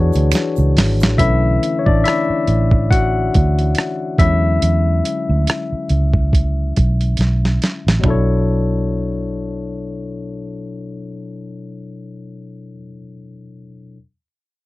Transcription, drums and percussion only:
0.13 closed hi-hat soft
0.13 shaker soft
0.32 finger snap medium
0.32 snare medium
0.32 closed hi-hat medium
0.32 shaker medium
0.56 shaker soft
0.77 snare loud
0.77 open hi-hat soft
1.00 snare loud
1.00 shaker soft
1.18 kick loud
1.18 closed hi-hat medium
1.63 closed hi-hat medium
1.86 kick medium
2.05 cross-stick medium
2.05 closed hi-hat medium
2.47 closed hi-hat soft
2.71 kick medium
2.91 kick medium
2.91 closed hi-hat medium
3.34 kick medium
3.34 closed hi-hat medium
3.59 closed hi-hat soft
3.75 cross-stick medium
3.75 closed hi-hat medium
4.18 kick loud
4.18 closed hi-hat medium
4.62 closed hi-hat medium
5.05 closed hi-hat medium
5.47 cross-stick loud
5.47 closed hi-hat medium
5.89 closed hi-hat soft
6.14 kick medium
6.33 kick medium
6.33 closed hi-hat medium
6.76 kick medium
6.76 closed hi-hat medium
7.01 closed hi-hat soft
7.17 snare soft
7.17 closed hi-hat medium
7.45 snare soft
7.62 snare medium
7.62 closed hi-hat medium
7.88 snare medium
8.04 kick medium
8.04 floor tom medium

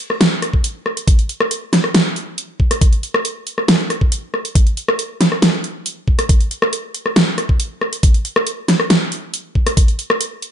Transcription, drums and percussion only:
0.10 cross-stick soft
0.21 snare loud
0.21 closed hi-hat medium
0.42 cross-stick soft
0.42 closed hi-hat soft
0.54 kick medium
0.64 closed hi-hat medium
0.86 cross-stick soft
0.97 closed hi-hat medium
1.08 kick loud
1.08 closed hi-hat medium
1.19 closed hi-hat soft
1.29 closed hi-hat soft
1.40 cross-stick medium
1.51 closed hi-hat medium
1.73 snare medium
1.73 closed hi-hat soft
1.84 cross-stick soft
1.95 snare loud
1.95 closed hi-hat medium
2.16 closed hi-hat soft
2.38 closed hi-hat medium
2.60 kick medium
2.71 cross-stick soft
2.71 closed hi-hat medium
2.81 kick loud
2.81 closed hi-hat medium
2.93 closed hi-hat soft
3.03 closed hi-hat soft
3.14 cross-stick medium
3.25 closed hi-hat medium
3.47 closed hi-hat soft
3.58 cross-stick soft
3.68 snare loud
3.68 closed hi-hat medium
3.90 cross-stick soft
3.90 closed hi-hat soft
4.01 kick medium
4.12 closed hi-hat medium
4.34 cross-stick soft
4.45 closed hi-hat medium
4.55 kick loud
4.55 closed hi-hat medium
4.67 closed hi-hat soft
4.77 closed hi-hat soft
4.88 cross-stick medium
4.99 closed hi-hat medium
5.21 snare medium
5.21 closed hi-hat soft
5.32 cross-stick soft
5.42 snare loud
5.42 closed hi-hat medium
5.64 closed hi-hat soft
5.86 closed hi-hat medium
6.08 kick medium
6.19 cross-stick soft
6.19 closed hi-hat medium
6.29 kick loud
6.29 closed hi-hat medium
6.41 closed hi-hat soft
6.51 closed hi-hat soft
6.62 cross-stick medium
6.73 closed hi-hat medium
6.94 closed hi-hat soft
7.06 cross-stick soft
7.16 snare loud
7.16 closed hi-hat medium
7.38 cross-stick soft
7.38 closed hi-hat soft
7.49 kick medium
7.60 closed hi-hat medium
7.81 cross-stick soft
7.93 closed hi-hat medium
8.03 kick loud
8.03 closed hi-hat medium
8.14 closed hi-hat soft
8.25 closed hi-hat soft
8.36 cross-stick medium
8.47 closed hi-hat medium
8.68 snare medium
8.68 closed hi-hat soft
8.80 cross-stick medium
8.90 snare loud
8.90 closed hi-hat medium
9.12 closed hi-hat soft
9.34 closed hi-hat medium
9.55 kick soft
9.67 cross-stick soft
9.67 closed hi-hat medium
9.77 kick medium
9.77 closed hi-hat medium
9.88 closed hi-hat soft
9.99 closed hi-hat soft
10.10 cross-stick medium
10.21 closed hi-hat medium
10.42 closed hi-hat soft

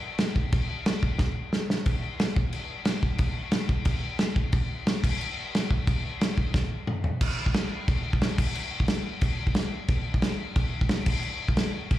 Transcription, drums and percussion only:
0.18 snare loud
0.18 crash medium
0.36 kick medium
0.52 kick loud
0.52 crash medium
0.86 snare loud
0.86 crash medium
1.03 kick medium
1.19 kick loud
1.19 snare medium
1.53 snare loud
1.70 snare loud
1.86 kick loud
1.86 crash medium
2.20 snare loud
2.20 crash medium
2.36 kick loud
2.53 crash medium
2.85 snare loud
2.85 crash medium
3.03 kick medium
3.18 kick loud
3.18 crash medium
3.51 snare loud
3.51 crash medium
3.69 kick medium
3.85 kick loud
3.85 crash medium
4.19 snare loud
4.19 crash medium
4.36 kick loud
4.52 kick loud
4.52 crash medium
4.87 snare loud
4.87 crash medium
5.04 kick loud
5.04 crash loud
5.21 crash medium
5.55 snare loud
5.55 crash medium
5.71 kick medium
5.87 kick loud
5.87 crash medium
6.21 snare loud
6.21 crash medium
6.38 kick medium
6.54 kick loud
6.54 snare medium
6.87 mid tom medium
7.04 floor tom loud
7.21 kick loud
7.21 crash loud
7.21 crash medium
7.46 kick medium
7.54 snare loud
7.54 crash medium
7.88 kick loud
7.88 crash medium
8.13 kick medium
8.21 snare loud
8.21 crash medium
8.38 kick loud
8.38 crash loud
8.55 crash medium
8.80 kick medium
8.88 snare loud
8.88 crash medium
9.21 kick loud
9.21 crash medium
9.47 kick medium
9.55 snare loud
9.55 crash medium
9.88 kick loud
9.88 crash medium
10.14 kick medium
10.22 snare loud
10.22 crash medium
10.56 kick loud
10.56 crash medium
10.81 kick medium
10.89 snare loud
10.89 crash medium
11.06 kick loud
11.06 crash loud
11.23 crash medium
11.48 kick medium
11.57 snare loud
11.57 crash medium
11.91 kick loud
11.91 crash medium

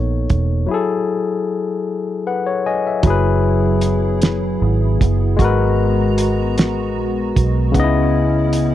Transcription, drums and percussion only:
0.30 kick medium
0.30 closed hi-hat soft
3.03 kick loud
3.03 closed hi-hat medium
3.81 closed hi-hat medium
4.22 snare loud
4.22 closed hi-hat medium
5.01 kick loud
5.01 closed hi-hat medium
5.39 kick loud
5.39 closed hi-hat medium
6.18 closed hi-hat medium
6.58 snare loud
6.58 closed hi-hat medium
7.36 kick loud
7.36 closed hi-hat medium
7.74 kick loud
7.74 closed hi-hat medium
8.53 closed hi-hat medium

